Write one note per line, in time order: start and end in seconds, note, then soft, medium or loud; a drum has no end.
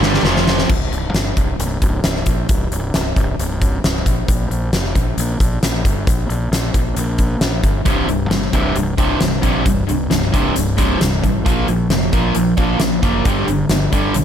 0.00 0.22 G1 loud
0.00 0.24 G2 medium
0.00 0.24 D3 medium
0.00 0.24 G3 loud
0.00 snare medium
0.14 snare medium
0.22 0.65 F1 medium
0.22 0.69 F2 medium
0.22 0.69 C3 medium
0.22 0.69 F3 loud
0.22 snare medium
0.36 snare medium
0.48 snare loud
0.58 snare medium
0.69 0.89 C1 medium
0.69 kick loud
0.69 crash medium
0.91 1.10 C1 medium
0.91 closed hi-hat medium
1.13 1.33 G1 medium
1.13 snare loud
1.13 closed hi-hat medium
1.37 1.56 C1 medium
1.37 kick medium
1.37 closed hi-hat medium
1.59 1.78 C1 medium
1.59 closed hi-hat medium
1.82 2.01 C1 medium
1.82 kick medium
1.82 closed hi-hat medium
2.04 2.23 C1 medium
2.04 snare loud
2.04 closed hi-hat medium
2.16 snare soft
2.26 2.45 A#1 medium
2.26 kick medium
2.26 closed hi-hat medium
2.49 2.68 C1 medium
2.49 kick loud
2.49 closed hi-hat medium
2.72 2.91 C1 medium
2.72 closed hi-hat medium
2.94 3.13 C1 medium
2.94 snare loud
2.94 closed hi-hat medium
3.16 3.35 C1 medium
3.16 kick medium
3.16 closed hi-hat medium
3.39 3.77 C1 medium
3.39 closed hi-hat medium
3.62 kick medium
3.62 closed hi-hat medium
3.84 4.03 C1 medium
3.84 snare loud
3.84 closed hi-hat medium
3.96 snare soft
4.06 4.25 A#1 medium
4.06 kick medium
4.06 closed hi-hat medium
4.28 4.47 A#1 medium
4.28 kick loud
4.28 closed hi-hat medium
4.50 4.69 A#1 medium
4.50 closed hi-hat soft
4.72 4.92 F1 medium
4.72 snare loud
4.72 closed hi-hat medium
4.85 snare soft
4.95 5.14 A#1 medium
4.95 kick medium
4.95 closed hi-hat medium
5.17 5.37 A#1 medium
5.17 closed hi-hat medium
5.40 5.59 A#1 medium
5.40 kick medium
5.40 closed hi-hat medium
5.62 5.82 A#1 medium
5.62 snare loud
5.62 closed hi-hat medium
5.74 snare soft
5.85 6.04 G1 medium
5.85 kick medium
5.85 closed hi-hat medium
6.07 6.26 A#1 medium
6.07 kick loud
6.07 closed hi-hat medium
6.29 6.48 A#1 medium
6.29 closed hi-hat medium
6.51 6.71 A#1 medium
6.51 snare loud
6.51 closed hi-hat medium
6.74 6.94 A#1 medium
6.74 kick medium
6.74 closed hi-hat medium
6.96 7.35 A#1 medium
6.96 closed hi-hat medium
7.18 kick medium
7.18 closed hi-hat medium
7.41 7.60 A#1 medium
7.41 snare loud
7.41 closed hi-hat medium
7.63 7.83 G1 medium
7.63 kick medium
7.63 closed hi-hat medium
7.85 8.05 C1 medium
7.85 8.07 C2 medium
7.85 8.07 G2 medium
7.85 8.07 C3 loud
7.85 kick loud
7.85 closed hi-hat medium
8.07 8.27 C1 medium
8.07 8.29 C2 medium
8.07 8.29 G2 medium
8.07 closed hi-hat soft
8.29 8.49 G1 medium
8.29 8.51 C2 medium
8.29 8.51 G2 medium
8.29 snare loud
8.29 closed hi-hat medium
8.42 snare soft
8.53 8.73 C1 medium
8.53 8.74 C2 medium
8.53 8.74 G2 medium
8.53 8.75 C3 loud
8.53 kick medium
8.53 closed hi-hat medium
8.75 8.95 C1 medium
8.75 8.96 C2 medium
8.75 8.96 G2 medium
8.75 closed hi-hat medium
8.98 9.18 C1 medium
8.98 9.19 C2 medium
8.98 9.19 G2 medium
8.98 9.19 C3 medium
8.98 kick medium
8.98 closed hi-hat medium
9.20 9.40 C1 medium
9.20 9.41 C2 medium
9.20 9.41 G2 medium
9.20 snare loud
9.20 closed hi-hat medium
9.32 snare soft
9.42 9.63 A#1 medium
9.42 9.63 C2 medium
9.42 9.64 G2 loud
9.42 9.64 C3 loud
9.42 kick medium
9.42 closed hi-hat medium
9.65 9.85 C1 medium
9.65 9.85 C2 medium
9.65 9.85 G2 medium
9.65 kick loud
9.65 closed hi-hat medium
9.87 10.07 C1 medium
9.87 10.08 C2 medium
9.87 10.08 G2 medium
9.87 closed hi-hat medium
10.10 10.30 C1 medium
10.10 10.31 C2 medium
10.10 10.31 G2 medium
10.10 snare loud
10.10 closed hi-hat medium
10.23 snare soft
10.32 10.53 C1 medium
10.32 10.53 C2 medium
10.32 10.54 G2 medium
10.32 10.54 C3 medium
10.32 kick medium
10.32 closed hi-hat medium
10.55 10.94 C1 medium
10.55 10.75 C2 medium
10.55 10.75 G2 medium
10.55 closed hi-hat medium
10.77 10.99 C2 medium
10.77 10.99 G2 medium
10.77 10.99 C3 medium
10.77 kick medium
10.77 closed hi-hat medium
11.00 11.20 C1 medium
11.00 11.21 C2 medium
11.00 11.21 G2 medium
11.00 snare loud
11.00 closed hi-hat medium
11.22 11.42 A1 medium
11.22 11.43 C2 medium
11.22 11.43 G2 medium
11.22 kick medium
11.22 closed hi-hat medium
11.45 11.65 A#1 medium
11.45 11.66 A#2 medium
11.45 11.67 F3 medium
11.45 11.67 A#3 loud
11.45 kick loud
11.45 closed hi-hat medium
11.67 11.88 A#1 medium
11.67 11.88 A#2 medium
11.67 11.88 F3 medium
11.67 closed hi-hat soft
11.90 12.09 F1 medium
11.90 12.11 A#2 medium
11.90 12.11 F3 medium
11.90 snare loud
11.90 closed hi-hat medium
12.02 snare soft
12.13 12.32 A#1 medium
12.13 12.34 A#2 medium
12.13 12.34 F3 medium
12.13 12.35 A#3 loud
12.13 kick medium
12.13 closed hi-hat medium
12.35 12.55 A#1 medium
12.35 12.56 A#2 medium
12.35 12.56 F3 medium
12.35 closed hi-hat medium
12.57 12.77 A#1 medium
12.57 12.79 A#2 medium
12.57 12.79 F3 medium
12.57 12.79 A#3 medium
12.57 kick medium
12.57 closed hi-hat medium
12.80 13.00 A#1 medium
12.80 13.01 A#2 medium
12.80 13.01 F3 medium
12.80 snare medium
12.80 closed hi-hat medium
13.03 13.22 F#1 medium
13.03 13.24 A#2 medium
13.03 13.24 F3 medium
13.03 13.24 A#3 loud
13.03 kick medium
13.03 closed hi-hat medium
13.25 13.45 G1 medium
13.25 13.46 G2 medium
13.25 13.46 D3 medium
13.25 13.47 G3 loud
13.25 kick loud
13.25 closed hi-hat medium
13.47 13.67 G1 medium
13.47 13.68 G2 medium
13.47 13.68 D3 medium
13.47 closed hi-hat medium
13.69 13.89 G1 medium
13.69 13.90 G2 medium
13.69 13.91 D3 medium
13.69 snare loud
13.69 closed hi-hat medium
13.92 14.12 G1 medium
13.92 14.14 G2 medium
13.92 14.14 D3 medium
13.92 14.14 G3 loud
13.92 kick medium
13.92 closed hi-hat medium
14.14 14.24 B1 medium
14.14 14.24 G2 medium
14.14 14.24 D3 medium
14.14 closed hi-hat medium